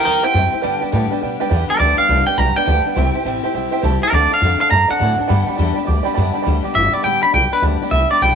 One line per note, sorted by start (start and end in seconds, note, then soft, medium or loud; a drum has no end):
0.04 0.23 E2 medium
0.04 0.23 G3 medium
0.04 0.24 C4 medium
0.04 0.23 E4 medium
0.04 0.21 G4 medium
0.04 0.23 A#4 medium
0.04 0.16 C5 medium
0.04 0.17 E5 medium
0.04 0.23 G5 loud
0.22 0.34 C4 soft
0.22 0.34 E4 medium
0.22 0.34 G4 medium
0.22 0.29 C5 loud
0.22 0.30 E5 medium
0.22 0.30 F#5 loud
0.22 1.09 G5 loud
0.22 muted upright bass stroke soft
0.33 0.53 F#2 loud
0.33 0.53 C3 medium
0.33 0.53 G3 medium
0.33 0.54 C4 medium
0.33 0.53 E4 medium
0.33 0.51 G4 medium
0.33 0.45 C5 loud
0.33 0.45 E5 medium
0.33 0.46 G5 loud
0.52 0.64 C4 soft
0.52 0.64 E4 soft
0.52 0.63 G4 medium
0.52 0.59 C5 medium
0.52 0.59 E5 medium
0.52 0.60 G5 medium
0.52 muted upright bass stroke medium
0.62 0.82 G2 medium
0.62 0.81 G2 medium
0.62 0.82 D3 loud
0.62 0.82 G3 medium
0.62 0.82 B3 medium
0.62 0.82 D4 medium
0.62 0.80 G4 loud
0.62 0.74 B4 loud
0.62 0.74 D5 loud
0.62 0.75 G5 loud
0.80 0.92 B3 medium
0.80 0.93 D4 medium
0.80 0.92 G4 medium
0.80 0.87 B4 medium
0.80 0.88 D5 medium
0.80 0.88 G5 loud
0.80 muted upright bass stroke soft
0.85 0.92 G3 medium
0.92 1.11 G2 medium
0.92 1.11 A2 loud
0.92 1.11 D3 loud
0.92 1.11 G3 medium
0.92 1.12 B3 medium
0.92 1.11 D4 loud
0.92 1.09 G4 medium
0.92 1.03 B4 medium
0.92 1.04 D5 medium
0.92 1.04 G5 medium
1.10 1.20 G3 medium
1.10 1.21 B3 medium
1.10 1.22 D4 medium
1.10 1.21 G4 medium
1.10 1.17 B4 medium
1.10 1.18 D5 medium
1.10 1.18 G5 loud
1.10 muted upright bass stroke medium
1.21 1.40 B2 medium
1.21 1.40 G3 medium
1.21 1.41 B3 medium
1.21 1.40 D4 medium
1.21 1.39 G4 medium
1.21 1.33 B4 medium
1.21 1.34 D5 medium
1.21 1.34 G5 medium
1.40 1.51 G3 soft
1.40 1.51 B3 medium
1.40 1.52 D4 medium
1.40 1.51 G4 medium
1.40 1.47 B4 loud
1.40 1.47 D5 loud
1.40 1.47 G5 loud
1.40 muted upright bass stroke soft
1.49 1.69 E2 loud
1.49 1.70 G2 loud
1.49 1.70 D3 medium
1.49 1.70 G3 medium
1.49 1.70 B3 loud
1.49 1.69 D4 medium
1.49 1.68 G4 loud
1.49 1.61 B4 loud
1.49 1.62 D5 loud
1.49 1.62 G5 loud
1.68 1.80 B3 soft
1.68 1.80 D4 soft
1.68 1.80 G4 soft
1.68 1.79 A#4 loud
1.68 1.75 B4 medium
1.68 1.76 D5 medium
1.68 1.76 G5 medium
1.68 muted upright bass stroke medium
1.72 1.79 G3 soft
1.78 1.98 D2 medium
1.78 1.99 G2 medium
1.78 1.99 D3 medium
1.78 1.99 G3 medium
1.78 1.98 B3 medium
1.78 1.97 D4 medium
1.78 1.96 G4 medium
1.78 1.90 B4 medium
1.78 1.91 D5 medium
1.78 1.98 D5 medium
1.78 1.91 G5 loud
1.97 2.08 G3 soft
1.97 2.08 B3 soft
1.97 2.09 D4 medium
1.97 2.08 G4 medium
1.97 2.05 B4 medium
1.97 2.05 D5 medium
1.97 2.26 F5 loud
1.97 2.05 G5 medium
1.97 muted upright bass stroke medium
2.08 2.27 C2 medium
2.08 2.27 G2 medium
2.08 2.28 D3 medium
2.08 2.28 G3 medium
2.08 2.28 B3 medium
2.08 2.27 D4 medium
2.08 2.25 G4 medium
2.08 2.20 B4 medium
2.08 2.20 D5 medium
2.08 2.21 G5 medium
2.26 2.36 G3 soft
2.26 2.37 B3 medium
2.26 2.38 D4 medium
2.26 2.38 G4 medium
2.26 2.34 B4 medium
2.26 2.34 D5 medium
2.26 2.38 G5 loud
2.26 2.34 G5 medium
2.26 muted upright bass stroke medium
2.37 2.56 B1 medium
2.37 2.56 G3 medium
2.37 2.57 B3 medium
2.37 2.56 D4 medium
2.37 2.55 G4 medium
2.37 2.49 B4 medium
2.37 2.49 D5 medium
2.37 2.50 G5 medium
2.37 2.56 A#5 loud
2.56 2.65 G3 soft
2.56 2.66 B3 soft
2.56 2.66 D4 medium
2.56 2.67 G4 medium
2.56 2.63 B4 loud
2.56 2.63 D5 loud
2.56 3.42 G5 loud
2.56 2.64 G5 loud
2.56 muted upright bass stroke medium
2.65 2.85 D2 loud
2.65 2.85 G2 medium
2.65 2.86 D3 medium
2.65 2.86 G3 medium
2.65 2.85 B3 medium
2.65 2.84 D4 medium
2.65 2.83 G4 medium
2.65 2.79 B4 loud
2.65 2.79 D5 medium
2.65 2.79 G5 loud
2.85 2.95 G3 soft
2.85 2.96 B3 medium
2.85 2.96 D4 medium
2.85 2.96 G4 soft
2.85 2.92 B4 medium
2.85 2.93 D5 medium
2.85 2.93 F#5 medium
2.85 muted upright bass stroke medium
2.95 3.15 C2 medium
2.95 3.14 C3 medium
2.95 3.15 G3 medium
2.95 3.15 C4 loud
2.95 3.14 E4 loud
2.95 3.12 G4 loud
2.95 3.08 C5 loud
2.95 3.08 E5 loud
2.95 3.08 G5 loud
3.13 3.25 C4 soft
3.13 3.26 E4 medium
3.13 3.25 G4 medium
3.13 3.21 C5 medium
3.13 3.22 E5 medium
3.13 3.22 G5 loud
3.13 muted upright bass stroke medium
3.24 3.43 A1 loud
3.24 3.44 C3 medium
3.24 3.45 G3 medium
3.24 3.45 C4 loud
3.24 3.44 E4 medium
3.24 3.42 G4 loud
3.24 3.36 C5 medium
3.24 3.37 E5 medium
3.24 3.37 G5 loud
3.43 3.53 C4 medium
3.43 3.55 E4 medium
3.43 3.54 G4 medium
3.43 3.50 C5 medium
3.43 3.51 E5 medium
3.43 3.51 G5 loud
3.43 muted upright bass stroke soft
3.53 3.72 B1 medium
3.53 3.73 G3 medium
3.53 3.74 C4 medium
3.53 3.73 E4 medium
3.53 3.71 G4 medium
3.53 3.65 C5 medium
3.53 3.66 E5 medium
3.53 3.66 G5 medium
3.71 3.83 E4 medium
3.71 3.83 G4 medium
3.71 3.79 C5 loud
3.71 3.79 E5 loud
3.71 3.80 G5 loud
3.71 muted upright bass stroke soft
3.76 3.82 C4 medium
3.82 4.02 C2 loud
3.82 4.02 C3 medium
3.82 4.02 G3 medium
3.82 4.03 C4 medium
3.82 4.02 E4 medium
3.82 4.00 G4 loud
3.82 3.94 C5 loud
3.82 3.95 E5 loud
3.82 3.95 A5 loud
4.01 4.11 C4 soft
4.01 4.13 E4 medium
4.01 4.12 G4 medium
4.01 4.13 A#4 loud
4.01 4.08 C5 medium
4.01 4.08 E5 medium
4.01 4.09 G5 medium
4.01 muted upright bass stroke medium
4.11 4.31 D2 medium
4.11 4.31 D3 medium
4.11 4.31 F#3 medium
4.11 4.32 C4 medium
4.11 4.31 D4 loud
4.11 4.30 A4 loud
4.11 4.23 D5 loud
4.11 4.32 D5 loud
4.11 4.24 F#5 medium
4.11 4.24 A5 loud
4.30 4.41 C4 soft
4.30 4.42 D4 medium
4.30 4.42 A4 medium
4.30 4.37 D5 medium
4.30 4.60 F5 medium
4.30 4.38 F#5 medium
4.30 4.38 A5 medium
4.30 muted upright bass stroke medium
4.41 4.60 F2 loud
4.41 4.60 D3 medium
4.41 4.61 F#3 medium
4.41 4.61 C4 medium
4.41 4.60 D4 medium
4.41 4.58 A4 medium
4.41 4.53 F#5 medium
4.59 4.70 C4 medium
4.59 4.71 D4 soft
4.59 4.71 A4 medium
4.59 4.66 D5 medium
4.59 4.70 F5 loud
4.59 4.67 F#5 medium
4.59 4.67 A5 medium
4.59 muted upright bass stroke medium
4.69 4.90 F#2 medium
4.69 4.89 F#3 medium
4.69 4.90 C4 medium
4.69 4.89 D4 medium
4.69 4.88 A4 medium
4.69 4.82 D5 medium
4.69 4.82 F#5 medium
4.69 4.82 A5 medium
4.69 4.89 A#5 loud
4.88 5.00 D4 medium
4.88 5.00 A4 medium
4.88 4.95 D5 loud
4.88 4.96 F#5 medium
4.88 5.75 F#5 loud
4.88 4.96 A5 loud
4.88 muted upright bass stroke medium
4.92 4.99 C4 soft
4.99 5.19 A2 medium
4.99 5.18 D3 medium
4.99 5.19 F#3 medium
4.99 5.19 C4 medium
4.99 5.18 D4 medium
4.99 5.17 A4 medium
4.99 5.11 D5 loud
4.99 5.12 F#5 medium
4.99 5.12 A5 loud
5.18 5.30 C4 soft
5.18 5.30 D4 medium
5.18 5.29 A4 medium
5.18 5.25 D5 medium
5.18 5.25 F#5 medium
5.18 5.26 A5 medium
5.18 muted upright bass stroke medium
5.28 5.48 G2 medium
5.28 5.48 D3 loud
5.28 5.48 G3 loud
5.28 5.48 B3 loud
5.28 5.46 D4 loud
5.28 5.45 G4 loud
5.28 5.40 D5 loud
5.28 5.40 G5 loud
5.28 5.41 B5 loud
5.46 5.57 G3 medium
5.46 5.58 B3 medium
5.46 5.58 D4 medium
5.46 5.58 G4 medium
5.46 5.54 D5 medium
5.46 5.54 G5 medium
5.46 5.54 B5 loud
5.46 muted upright bass stroke medium
5.56 5.77 E2 medium
5.56 5.77 G2 medium
5.56 5.77 D3 medium
5.56 5.77 G3 loud
5.56 5.78 B3 loud
5.56 5.77 D4 loud
5.56 5.76 G4 loud
5.56 5.68 D5 medium
5.56 5.69 G5 medium
5.56 5.69 B5 medium
5.73 5.88 G4 medium
5.73 5.82 D5 medium
5.73 5.82 G5 medium
5.73 5.83 B5 loud
5.78 5.85 G3 medium
5.78 5.87 B3 medium
5.78 5.87 D4 medium
5.78 muted upright bass stroke medium
5.85 6.06 D2 medium
5.85 6.06 G3 medium
5.85 6.07 B3 medium
5.85 6.05 D4 medium
5.85 5.98 D5 medium
5.85 5.98 G5 medium
5.85 5.99 D6 loud
5.90 6.04 G4 medium
6.03 6.17 D4 medium
6.03 6.17 G4 medium
6.03 6.11 D5 loud
6.03 6.12 G5 loud
6.03 6.12 B5 loud
6.03 muted upright bass stroke medium
6.08 6.17 G3 soft
6.08 6.17 B3 medium
6.14 6.35 F#2 loud
6.14 6.35 G2 medium
6.14 6.36 D3 medium
6.14 6.36 G3 loud
6.14 6.36 B3 medium
6.14 6.27 D5 loud
6.14 6.27 G5 loud
6.14 6.27 B5 loud
6.18 6.35 D4 medium
6.18 6.34 G4 medium
6.32 6.46 G4 medium
6.32 6.40 D5 medium
6.32 6.41 G5 medium
6.32 6.41 B5 loud
6.36 6.45 G3 soft
6.36 6.46 B3 medium
6.36 6.46 D4 medium
6.36 muted upright bass stroke medium
6.42 6.65 G2 medium
6.42 6.65 D3 medium
6.42 6.56 D5 loud
6.42 6.56 G5 loud
6.42 6.56 B5 loud
6.47 6.65 D2 medium
6.47 6.65 G3 loud
6.47 6.65 B3 medium
6.47 6.64 D4 loud
6.47 6.63 G4 loud
6.63 6.76 B3 medium
6.63 6.76 D4 medium
6.63 6.75 G4 medium
6.63 6.70 D5 medium
6.63 6.70 G5 medium
6.63 6.71 D6 medium
6.63 muted upright bass stroke medium
6.68 6.74 G3 medium
6.73 6.93 G1 medium
6.73 6.94 G3 medium
6.73 6.85 D5 medium
6.73 6.93 E5 loud
6.73 6.86 G5 medium
6.73 6.86 D6 medium
6.77 6.95 B3 medium
6.77 6.94 D4 medium
6.77 6.93 G4 medium
6.92 7.05 D4 medium
6.92 7.05 G4 medium
6.92 6.99 D5 medium
6.92 7.04 D5 medium
6.92 7.00 G5 medium
6.92 7.00 B5 medium
6.92 muted upright bass stroke medium
6.96 7.05 G3 soft
6.96 7.05 B3 medium
7.03 7.22 A1 medium
7.03 7.23 G2 medium
7.03 7.24 D3 medium
7.03 7.24 G3 medium
7.03 7.24 B3 medium
7.03 7.15 D5 medium
7.03 7.15 G5 medium
7.03 7.22 G5 loud
7.03 7.16 B5 loud
7.07 7.23 D4 medium
7.07 7.22 G4 medium
7.22 7.33 B3 soft
7.22 7.34 D4 medium
7.22 7.34 G4 medium
7.22 7.29 D5 medium
7.22 7.29 G5 medium
7.22 7.33 B5 medium
7.22 7.30 B5 medium
7.22 muted upright bass stroke soft
7.27 7.32 G3 soft
7.33 7.51 B1 loud
7.33 7.52 G3 medium
7.33 7.53 B3 medium
7.33 7.52 D4 medium
7.33 7.44 D5 medium
7.33 7.45 G5 medium
7.33 7.52 G5 medium
7.33 7.45 B5 loud
7.37 7.51 G4 medium
7.52 7.62 G3 soft
7.52 7.63 B3 soft
7.52 7.63 D4 soft
7.52 7.63 G4 medium
7.52 7.63 B4 loud
7.52 7.59 D5 medium
7.52 7.59 G5 medium
7.52 7.59 B5 medium
7.52 muted upright bass stroke medium
7.62 7.81 D2 medium
7.62 7.81 G2 medium
7.62 7.82 D3 medium
7.62 7.82 G3 medium
7.62 7.82 B3 medium
7.62 7.82 D4 loud
7.62 7.81 G4 medium
7.62 7.74 D5 loud
7.62 7.74 G5 medium
7.62 7.75 B5 loud
7.81 7.92 B3 medium
7.81 7.93 D4 medium
7.81 7.92 G4 medium
7.81 7.88 D5 medium
7.81 7.88 G5 medium
7.81 7.89 B5 medium
7.81 muted upright bass stroke medium
7.85 7.91 G3 soft
7.91 8.09 C2 medium
7.91 8.11 G3 medium
7.91 8.11 B3 medium
7.91 8.10 D4 medium
7.91 8.04 D5 medium
7.91 8.10 E5 loud
7.91 8.04 G5 medium
7.91 8.04 B5 medium
7.95 8.09 G4 medium
8.10 8.21 G3 soft
8.10 8.21 B3 medium
8.10 8.22 D4 medium
8.10 8.21 G4 medium
8.10 8.21 D5 medium
8.10 8.18 D5 medium
8.10 8.18 G5 medium
8.10 8.18 B5 medium
8.10 muted upright bass stroke medium
8.21 8.35 B1 medium
8.21 8.35 G2 medium
8.21 8.35 D3 medium
8.21 8.35 G3 medium
8.21 8.35 B3 medium
8.21 8.35 D4 medium
8.21 8.35 G4 medium
8.21 8.33 D5 medium
8.21 8.33 G5 medium
8.21 8.35 G5 medium
8.21 8.34 B5 loud